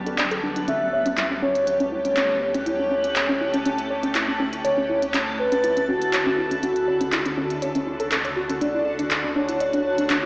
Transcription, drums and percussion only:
0.07 closed hi-hat soft
0.18 clap loud
0.18 closed hi-hat medium
0.31 closed hi-hat soft
0.56 closed hi-hat soft
0.68 closed hi-hat medium
1.06 closed hi-hat soft
1.17 clap loud
1.17 closed hi-hat medium
1.55 closed hi-hat soft
1.67 closed hi-hat medium
1.80 closed hi-hat soft
2.05 closed hi-hat soft
2.17 clap loud
2.17 closed hi-hat medium
2.54 closed hi-hat soft
2.66 closed hi-hat medium
3.04 closed hi-hat soft
3.16 clap loud
3.16 closed hi-hat medium
3.54 closed hi-hat soft
3.66 closed hi-hat medium
3.78 closed hi-hat soft
4.03 closed hi-hat soft
4.15 clap loud
4.15 closed hi-hat medium
4.53 closed hi-hat soft
4.65 closed hi-hat medium
5.02 closed hi-hat medium
5.14 clap loud
5.14 closed hi-hat medium
5.52 closed hi-hat soft
5.64 closed hi-hat medium
5.77 closed hi-hat soft
6.02 closed hi-hat soft
6.13 clap loud
6.13 closed hi-hat medium
6.51 closed hi-hat medium
6.63 closed hi-hat medium
6.76 closed hi-hat soft
7.01 closed hi-hat soft
7.12 clap loud
7.12 closed hi-hat medium
7.26 closed hi-hat soft
7.50 closed hi-hat medium
7.62 closed hi-hat medium
7.75 closed hi-hat soft
8.00 closed hi-hat soft
8.12 clap loud
8.12 closed hi-hat medium
8.25 closed hi-hat soft
8.50 closed hi-hat medium
8.61 closed hi-hat medium
8.99 closed hi-hat medium
9.11 clap loud
9.11 closed hi-hat medium
9.49 closed hi-hat medium
9.60 closed hi-hat medium
9.73 closed hi-hat soft
9.98 closed hi-hat soft
10.10 clap loud
10.10 closed hi-hat medium

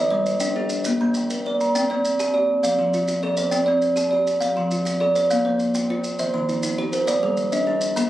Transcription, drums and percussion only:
0.26 maracas medium
0.40 maracas medium
0.69 maracas medium
0.84 maracas medium
1.14 maracas medium
1.30 maracas medium
1.61 maracas medium
1.75 maracas medium
2.05 maracas medium
2.20 maracas medium
2.64 maracas medium
2.94 maracas medium
3.08 maracas medium
3.37 maracas medium
3.52 maracas medium
3.82 maracas medium
3.97 maracas medium
4.27 maracas medium
4.41 maracas medium
4.71 maracas medium
4.86 maracas medium
5.16 maracas medium
5.30 maracas medium
5.59 maracas medium
5.74 maracas medium
6.04 maracas medium
6.19 maracas medium
6.49 maracas medium
6.63 maracas medium
6.93 maracas medium
7.08 maracas medium
7.37 maracas soft
7.52 maracas medium
7.81 maracas medium
7.97 maracas medium

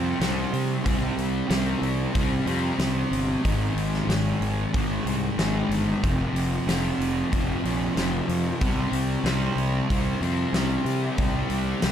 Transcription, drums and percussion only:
0.21 snare loud
0.21 open hi-hat medium
0.54 open hi-hat soft
0.86 kick loud
0.86 open hi-hat medium
1.18 open hi-hat medium
1.50 snare loud
1.50 open hi-hat medium
1.83 open hi-hat soft
2.15 kick medium
2.15 open hi-hat medium
2.47 open hi-hat soft
2.79 snare medium
2.79 open hi-hat medium
3.13 open hi-hat soft
3.45 kick loud
3.45 open hi-hat medium
3.78 open hi-hat soft
3.94 snare soft
4.10 snare medium
4.10 open hi-hat medium
4.42 open hi-hat soft
4.74 kick loud
4.74 open hi-hat medium
5.07 open hi-hat soft
5.39 snare medium
5.39 open hi-hat medium
5.71 open hi-hat soft
6.04 kick medium
6.04 open hi-hat medium
6.36 open hi-hat medium
6.69 snare loud
6.69 open hi-hat medium
7.01 open hi-hat soft
7.33 kick loud
7.33 open hi-hat medium
7.65 open hi-hat soft
7.97 snare medium
7.97 open hi-hat medium
8.29 open hi-hat soft
8.61 kick loud
8.61 open hi-hat medium
8.93 open hi-hat medium
9.26 snare loud
9.26 open hi-hat medium
9.58 open hi-hat soft
9.90 kick medium
9.90 open hi-hat medium
10.23 open hi-hat soft
10.54 snare medium
10.54 open hi-hat medium
10.86 open hi-hat soft
11.18 kick medium
11.18 open hi-hat medium
11.50 open hi-hat soft
11.82 snare loud
11.82 open hi-hat medium

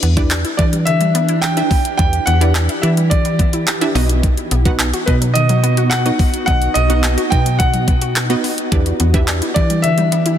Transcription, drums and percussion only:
0.03 closed hi-hat medium
0.17 kick loud
0.17 closed hi-hat medium
0.31 clap loud
0.31 closed hi-hat medium
0.45 closed hi-hat medium
0.59 kick medium
0.59 closed hi-hat medium
0.73 closed hi-hat medium
0.87 closed hi-hat medium
1.01 closed hi-hat soft
1.15 closed hi-hat medium
1.29 closed hi-hat medium
1.43 clap loud
1.43 closed hi-hat loud
1.57 closed hi-hat medium
1.71 kick medium
1.71 open hi-hat medium
1.85 closed hi-hat medium
1.99 kick loud
1.99 closed hi-hat medium
2.13 closed hi-hat medium
2.27 closed hi-hat medium
2.41 closed hi-hat medium
2.55 clap loud
2.55 closed hi-hat medium
2.69 closed hi-hat medium
2.83 closed hi-hat medium
2.97 closed hi-hat medium
3.11 kick medium
3.11 closed hi-hat medium
3.25 closed hi-hat soft
3.39 kick medium
3.39 closed hi-hat medium
3.53 closed hi-hat medium
3.67 clap loud
3.67 closed hi-hat loud
3.81 closed hi-hat medium
3.95 open hi-hat medium
4.09 closed hi-hat medium
4.23 kick loud
4.23 closed hi-hat medium
4.37 closed hi-hat medium
4.51 closed hi-hat medium
4.65 kick loud
4.65 closed hi-hat medium
4.79 clap loud
4.79 closed hi-hat medium
4.94 closed hi-hat soft
5.08 kick medium
5.08 closed hi-hat medium
5.22 closed hi-hat medium
5.35 closed hi-hat medium
5.49 closed hi-hat soft
5.64 closed hi-hat medium
5.77 closed hi-hat soft
5.91 clap loud
5.91 closed hi-hat loud
6.06 closed hi-hat medium
6.19 kick medium
6.19 open hi-hat medium
6.34 closed hi-hat medium
6.48 kick loud
6.48 closed hi-hat medium
6.62 closed hi-hat soft
6.75 closed hi-hat medium
6.90 closed hi-hat medium
7.04 clap loud
7.04 closed hi-hat medium
7.18 closed hi-hat medium
7.32 kick medium
7.32 closed hi-hat medium
7.46 closed hi-hat medium
7.60 kick medium
7.60 closed hi-hat medium
7.74 closed hi-hat soft
7.88 kick medium
7.88 closed hi-hat medium
8.02 closed hi-hat soft
8.16 clap loud
8.16 closed hi-hat loud
8.30 closed hi-hat medium
8.44 open hi-hat medium
8.58 closed hi-hat medium
8.72 kick loud
8.72 closed hi-hat medium
8.86 closed hi-hat soft
9.00 closed hi-hat medium
9.14 kick loud
9.14 closed hi-hat medium
9.28 clap loud
9.28 closed hi-hat medium
9.42 closed hi-hat medium
9.56 kick medium
9.56 closed hi-hat medium
9.70 closed hi-hat medium
9.84 closed hi-hat medium
9.98 closed hi-hat soft
10.12 closed hi-hat medium
10.26 closed hi-hat medium

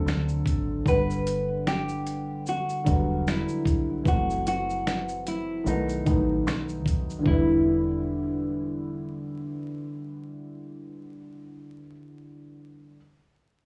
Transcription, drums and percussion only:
0.08 finger snap medium
0.08 snare loud
0.08 shaker medium
0.28 shaker soft
0.46 kick medium
0.46 closed hi-hat medium
0.46 shaker soft
0.86 kick loud
0.86 shaker medium
1.10 shaker soft
1.27 closed hi-hat medium
1.27 shaker medium
1.67 finger snap medium
1.67 snare loud
1.67 shaker medium
1.89 shaker soft
2.07 closed hi-hat medium
2.07 shaker soft
2.46 shaker medium
2.69 shaker soft
2.86 kick medium
2.86 closed hi-hat medium
2.86 shaker soft
3.27 finger snap medium
3.27 snare loud
3.27 shaker medium
3.48 shaker soft
3.65 kick medium
3.65 closed hi-hat medium
3.65 shaker soft
4.05 kick loud
4.05 shaker medium
4.30 shaker soft
4.47 closed hi-hat medium
4.47 shaker medium
4.70 shaker soft
4.87 finger snap medium
4.87 snare loud
4.87 shaker medium
5.09 shaker soft
5.27 closed hi-hat medium
5.27 shaker soft
5.67 shaker medium
5.89 shaker soft
6.06 kick medium
6.06 closed hi-hat soft
6.06 shaker soft
6.47 finger snap medium
6.47 snare loud
6.47 shaker medium
6.69 shaker soft
6.86 kick medium
6.86 closed hi-hat medium
6.86 shaker soft
7.10 shaker soft
7.26 kick loud

